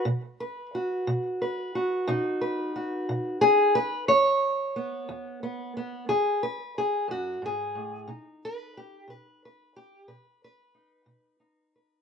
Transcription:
0, 0, Header, 1, 2, 480
1, 0, Start_track
1, 0, Tempo, 668151
1, 43, Time_signature, 12, 3, 24, 8
1, 8633, End_track
2, 0, Start_track
2, 0, Title_t, "Steel-string acoustic guitar"
2, 0, Program_c, 0, 25
2, 36, Note_on_c, 0, 47, 73
2, 290, Note_on_c, 0, 71, 46
2, 473, Note_off_c, 0, 47, 0
2, 537, Note_on_c, 0, 66, 41
2, 770, Note_on_c, 0, 47, 75
2, 1015, Note_off_c, 0, 71, 0
2, 1017, Note_on_c, 0, 71, 44
2, 1200, Note_off_c, 0, 47, 0
2, 1250, Note_off_c, 0, 66, 0
2, 1258, Note_on_c, 0, 66, 47
2, 1490, Note_on_c, 0, 47, 87
2, 1494, Note_on_c, 0, 63, 55
2, 1731, Note_off_c, 0, 71, 0
2, 1734, Note_on_c, 0, 71, 56
2, 1921, Note_off_c, 0, 47, 0
2, 1973, Note_off_c, 0, 66, 0
2, 1981, Note_on_c, 0, 66, 45
2, 2219, Note_on_c, 0, 47, 76
2, 2449, Note_off_c, 0, 66, 0
2, 2452, Note_on_c, 0, 68, 111
2, 2646, Note_off_c, 0, 47, 0
2, 2690, Note_off_c, 0, 68, 0
2, 2692, Note_off_c, 0, 71, 0
2, 2695, Note_on_c, 0, 71, 89
2, 2903, Note_off_c, 0, 63, 0
2, 2930, Note_off_c, 0, 71, 0
2, 2933, Note_on_c, 0, 73, 118
2, 2936, Note_on_c, 0, 40, 74
2, 3364, Note_off_c, 0, 40, 0
2, 3420, Note_on_c, 0, 59, 48
2, 3655, Note_on_c, 0, 40, 70
2, 3898, Note_off_c, 0, 59, 0
2, 3901, Note_on_c, 0, 59, 50
2, 4084, Note_off_c, 0, 40, 0
2, 4141, Note_off_c, 0, 59, 0
2, 4144, Note_on_c, 0, 59, 52
2, 4371, Note_off_c, 0, 59, 0
2, 4371, Note_off_c, 0, 73, 0
2, 4374, Note_on_c, 0, 40, 86
2, 4374, Note_on_c, 0, 68, 86
2, 4610, Note_off_c, 0, 68, 0
2, 4619, Note_on_c, 0, 71, 85
2, 4803, Note_off_c, 0, 40, 0
2, 4854, Note_off_c, 0, 71, 0
2, 4871, Note_on_c, 0, 68, 95
2, 5085, Note_on_c, 0, 42, 67
2, 5099, Note_off_c, 0, 68, 0
2, 5107, Note_on_c, 0, 66, 98
2, 5326, Note_off_c, 0, 42, 0
2, 5330, Note_on_c, 0, 44, 66
2, 5338, Note_off_c, 0, 66, 0
2, 5356, Note_on_c, 0, 68, 106
2, 5569, Note_off_c, 0, 44, 0
2, 5569, Note_on_c, 0, 45, 64
2, 5801, Note_on_c, 0, 47, 77
2, 5804, Note_on_c, 0, 63, 54
2, 5808, Note_off_c, 0, 45, 0
2, 5822, Note_off_c, 0, 68, 0
2, 6070, Note_on_c, 0, 71, 127
2, 6236, Note_off_c, 0, 47, 0
2, 6298, Note_off_c, 0, 71, 0
2, 6303, Note_on_c, 0, 67, 96
2, 6520, Note_on_c, 0, 47, 73
2, 6534, Note_off_c, 0, 67, 0
2, 6538, Note_on_c, 0, 71, 79
2, 6772, Note_off_c, 0, 71, 0
2, 6791, Note_on_c, 0, 71, 81
2, 6954, Note_off_c, 0, 47, 0
2, 7014, Note_on_c, 0, 67, 105
2, 7018, Note_off_c, 0, 71, 0
2, 7241, Note_on_c, 0, 47, 85
2, 7242, Note_on_c, 0, 71, 88
2, 7249, Note_off_c, 0, 67, 0
2, 7482, Note_off_c, 0, 71, 0
2, 7503, Note_on_c, 0, 71, 109
2, 7675, Note_off_c, 0, 47, 0
2, 7712, Note_off_c, 0, 63, 0
2, 7720, Note_on_c, 0, 63, 44
2, 7945, Note_on_c, 0, 47, 80
2, 8180, Note_off_c, 0, 63, 0
2, 8189, Note_on_c, 0, 63, 47
2, 8385, Note_off_c, 0, 47, 0
2, 8437, Note_off_c, 0, 71, 0
2, 8445, Note_on_c, 0, 71, 52
2, 8633, Note_off_c, 0, 63, 0
2, 8633, Note_off_c, 0, 71, 0
2, 8633, End_track
0, 0, End_of_file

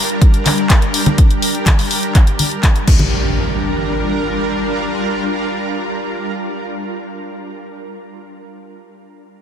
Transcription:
0, 0, Header, 1, 4, 480
1, 0, Start_track
1, 0, Key_signature, -2, "minor"
1, 0, Tempo, 483871
1, 1172, Time_signature, 4, 2, 24, 8
1, 9344, End_track
2, 0, Start_track
2, 0, Title_t, "Ambient pad"
2, 0, Program_c, 0, 92
2, 0, Note_on_c, 0, 55, 81
2, 0, Note_on_c, 0, 62, 76
2, 0, Note_on_c, 0, 67, 70
2, 0, Note_on_c, 0, 70, 88
2, 2812, Note_off_c, 0, 55, 0
2, 2812, Note_off_c, 0, 62, 0
2, 2812, Note_off_c, 0, 70, 0
2, 2816, Note_off_c, 0, 67, 0
2, 2851, Note_on_c, 0, 70, 86
2, 2852, Note_on_c, 0, 55, 80
2, 2852, Note_on_c, 0, 62, 71
2, 2852, Note_on_c, 0, 65, 74
2, 7524, Note_off_c, 0, 70, 0
2, 7525, Note_off_c, 0, 55, 0
2, 7525, Note_off_c, 0, 62, 0
2, 7526, Note_off_c, 0, 65, 0
2, 9344, End_track
3, 0, Start_track
3, 0, Title_t, "Impact"
3, 0, Program_c, 1, 103
3, 2853, Note_on_c, 1, 60, 58
3, 7566, Note_off_c, 1, 60, 0
3, 9344, End_track
4, 0, Start_track
4, 0, Title_t, "Drums"
4, 95, Note_on_c, 9, 42, 37
4, 195, Note_off_c, 9, 42, 0
4, 213, Note_on_c, 9, 36, 119
4, 214, Note_on_c, 9, 42, 79
4, 313, Note_off_c, 9, 36, 0
4, 313, Note_off_c, 9, 42, 0
4, 335, Note_on_c, 9, 42, 35
4, 435, Note_off_c, 9, 42, 0
4, 453, Note_on_c, 9, 39, 59
4, 453, Note_on_c, 9, 46, 105
4, 455, Note_on_c, 9, 63, 70
4, 552, Note_off_c, 9, 39, 0
4, 553, Note_off_c, 9, 46, 0
4, 554, Note_off_c, 9, 63, 0
4, 575, Note_on_c, 9, 42, 35
4, 674, Note_off_c, 9, 42, 0
4, 693, Note_on_c, 9, 36, 98
4, 693, Note_on_c, 9, 39, 113
4, 693, Note_on_c, 9, 42, 90
4, 792, Note_off_c, 9, 39, 0
4, 793, Note_off_c, 9, 36, 0
4, 793, Note_off_c, 9, 42, 0
4, 815, Note_on_c, 9, 42, 35
4, 914, Note_off_c, 9, 42, 0
4, 932, Note_on_c, 9, 46, 103
4, 1032, Note_off_c, 9, 46, 0
4, 1054, Note_on_c, 9, 42, 37
4, 1054, Note_on_c, 9, 63, 94
4, 1153, Note_off_c, 9, 42, 0
4, 1154, Note_off_c, 9, 63, 0
4, 1172, Note_on_c, 9, 42, 83
4, 1173, Note_on_c, 9, 36, 116
4, 1271, Note_off_c, 9, 42, 0
4, 1272, Note_off_c, 9, 36, 0
4, 1295, Note_on_c, 9, 42, 36
4, 1394, Note_off_c, 9, 42, 0
4, 1413, Note_on_c, 9, 46, 99
4, 1512, Note_off_c, 9, 46, 0
4, 1535, Note_on_c, 9, 42, 33
4, 1634, Note_off_c, 9, 42, 0
4, 1646, Note_on_c, 9, 63, 88
4, 1653, Note_on_c, 9, 36, 101
4, 1653, Note_on_c, 9, 39, 107
4, 1653, Note_on_c, 9, 42, 83
4, 1745, Note_off_c, 9, 63, 0
4, 1752, Note_off_c, 9, 36, 0
4, 1752, Note_off_c, 9, 39, 0
4, 1752, Note_off_c, 9, 42, 0
4, 1775, Note_on_c, 9, 46, 59
4, 1874, Note_off_c, 9, 46, 0
4, 1892, Note_on_c, 9, 46, 101
4, 1991, Note_off_c, 9, 46, 0
4, 2014, Note_on_c, 9, 42, 36
4, 2113, Note_off_c, 9, 42, 0
4, 2132, Note_on_c, 9, 39, 53
4, 2133, Note_on_c, 9, 36, 116
4, 2133, Note_on_c, 9, 42, 76
4, 2231, Note_off_c, 9, 39, 0
4, 2232, Note_off_c, 9, 36, 0
4, 2232, Note_off_c, 9, 42, 0
4, 2254, Note_on_c, 9, 42, 35
4, 2353, Note_off_c, 9, 42, 0
4, 2372, Note_on_c, 9, 46, 99
4, 2375, Note_on_c, 9, 63, 60
4, 2471, Note_off_c, 9, 46, 0
4, 2474, Note_off_c, 9, 63, 0
4, 2494, Note_on_c, 9, 42, 35
4, 2593, Note_off_c, 9, 42, 0
4, 2613, Note_on_c, 9, 36, 97
4, 2613, Note_on_c, 9, 39, 107
4, 2613, Note_on_c, 9, 42, 84
4, 2712, Note_off_c, 9, 36, 0
4, 2712, Note_off_c, 9, 39, 0
4, 2712, Note_off_c, 9, 42, 0
4, 2734, Note_on_c, 9, 42, 33
4, 2833, Note_off_c, 9, 42, 0
4, 2852, Note_on_c, 9, 36, 101
4, 2852, Note_on_c, 9, 49, 76
4, 2951, Note_off_c, 9, 49, 0
4, 2952, Note_off_c, 9, 36, 0
4, 2969, Note_on_c, 9, 63, 89
4, 3069, Note_off_c, 9, 63, 0
4, 9344, End_track
0, 0, End_of_file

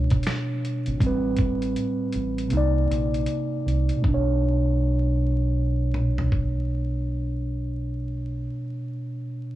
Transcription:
0, 0, Header, 1, 4, 480
1, 0, Start_track
1, 0, Tempo, 759494
1, 635, Time_signature, 4, 2, 24, 8
1, 6039, End_track
2, 0, Start_track
2, 0, Title_t, "Tine electric piano"
2, 0, Program_c, 0, 4
2, 0, Control_c, 0, 64, 127
2, 0, Note_on_c, 0, 47, 72
2, 0, Note_on_c, 0, 57, 69
2, 0, Note_on_c, 0, 62, 67
2, 0, Note_on_c, 0, 73, 74
2, 598, Note_off_c, 0, 47, 0
2, 608, Note_off_c, 0, 57, 0
2, 617, Note_off_c, 0, 62, 0
2, 617, Note_on_c, 0, 45, 70
2, 627, Note_off_c, 0, 73, 0
2, 635, Note_on_c, 0, 55, 76
2, 643, Control_c, 0, 64, 0
2, 654, Note_on_c, 0, 60, 67
2, 673, Note_on_c, 0, 71, 80
2, 755, Control_c, 0, 64, 127
2, 1567, Note_off_c, 0, 45, 0
2, 1568, Note_on_c, 0, 48, 74
2, 1576, Note_off_c, 0, 55, 0
2, 1586, Note_off_c, 0, 60, 0
2, 1587, Note_on_c, 0, 58, 61
2, 1595, Note_off_c, 0, 71, 0
2, 1603, Control_c, 0, 64, 0
2, 1605, Note_on_c, 0, 63, 67
2, 1624, Note_on_c, 0, 74, 80
2, 1694, Control_c, 0, 64, 127
2, 2504, Note_on_c, 0, 47, 71
2, 2522, Note_off_c, 0, 48, 0
2, 2532, Note_off_c, 0, 58, 0
2, 2541, Note_off_c, 0, 63, 0
2, 2541, Note_on_c, 0, 57, 64
2, 2551, Note_off_c, 0, 74, 0
2, 2565, Control_c, 0, 64, 0
2, 2580, Note_on_c, 0, 62, 63
2, 2616, Note_on_c, 0, 73, 80
2, 2661, Control_c, 0, 64, 127
2, 5294, Note_off_c, 0, 47, 0
2, 5331, Note_off_c, 0, 57, 0
2, 5370, Note_off_c, 0, 62, 0
2, 5406, Note_off_c, 0, 73, 0
2, 6039, End_track
3, 0, Start_track
3, 0, Title_t, "Fingered electric bass"
3, 0, Program_c, 1, 33
3, 550, Note_on_c, 1, 32, 85
3, 630, Note_off_c, 1, 32, 0
3, 636, Note_on_c, 1, 33, 101
3, 859, Note_off_c, 1, 33, 0
3, 876, Note_on_c, 1, 33, 88
3, 1099, Note_off_c, 1, 33, 0
3, 1358, Note_on_c, 1, 33, 77
3, 1580, Note_off_c, 1, 33, 0
3, 1595, Note_on_c, 1, 36, 80
3, 1819, Note_off_c, 1, 36, 0
3, 1836, Note_on_c, 1, 34, 78
3, 2059, Note_off_c, 1, 34, 0
3, 2315, Note_on_c, 1, 36, 73
3, 2458, Note_off_c, 1, 36, 0
3, 2555, Note_on_c, 1, 35, 83
3, 5345, Note_off_c, 1, 35, 0
3, 6039, End_track
4, 0, Start_track
4, 0, Title_t, "Drums"
4, 66, Note_on_c, 9, 42, 51
4, 73, Note_on_c, 9, 36, 92
4, 129, Note_off_c, 9, 42, 0
4, 136, Note_off_c, 9, 36, 0
4, 145, Note_on_c, 9, 42, 72
4, 169, Note_on_c, 9, 38, 112
4, 170, Note_on_c, 9, 26, 85
4, 209, Note_off_c, 9, 42, 0
4, 232, Note_off_c, 9, 38, 0
4, 233, Note_off_c, 9, 26, 0
4, 409, Note_on_c, 9, 42, 50
4, 472, Note_off_c, 9, 42, 0
4, 543, Note_on_c, 9, 42, 50
4, 606, Note_off_c, 9, 42, 0
4, 635, Note_on_c, 9, 36, 115
4, 641, Note_on_c, 9, 42, 82
4, 698, Note_off_c, 9, 36, 0
4, 705, Note_off_c, 9, 42, 0
4, 863, Note_on_c, 9, 42, 57
4, 876, Note_on_c, 9, 36, 71
4, 926, Note_off_c, 9, 42, 0
4, 939, Note_off_c, 9, 36, 0
4, 1024, Note_on_c, 9, 42, 51
4, 1087, Note_off_c, 9, 42, 0
4, 1114, Note_on_c, 9, 42, 81
4, 1177, Note_off_c, 9, 42, 0
4, 1343, Note_on_c, 9, 42, 68
4, 1406, Note_off_c, 9, 42, 0
4, 1505, Note_on_c, 9, 42, 47
4, 1569, Note_off_c, 9, 42, 0
4, 1581, Note_on_c, 9, 42, 71
4, 1644, Note_off_c, 9, 42, 0
4, 1842, Note_on_c, 9, 42, 58
4, 1905, Note_off_c, 9, 42, 0
4, 1987, Note_on_c, 9, 42, 44
4, 2050, Note_off_c, 9, 42, 0
4, 2063, Note_on_c, 9, 42, 68
4, 2126, Note_off_c, 9, 42, 0
4, 2326, Note_on_c, 9, 42, 45
4, 2389, Note_off_c, 9, 42, 0
4, 2459, Note_on_c, 9, 42, 45
4, 2522, Note_off_c, 9, 42, 0
4, 2553, Note_on_c, 9, 36, 94
4, 2616, Note_off_c, 9, 36, 0
4, 3755, Note_on_c, 9, 47, 57
4, 3818, Note_off_c, 9, 47, 0
4, 3907, Note_on_c, 9, 43, 66
4, 3970, Note_off_c, 9, 43, 0
4, 3994, Note_on_c, 9, 36, 76
4, 4057, Note_off_c, 9, 36, 0
4, 6039, End_track
0, 0, End_of_file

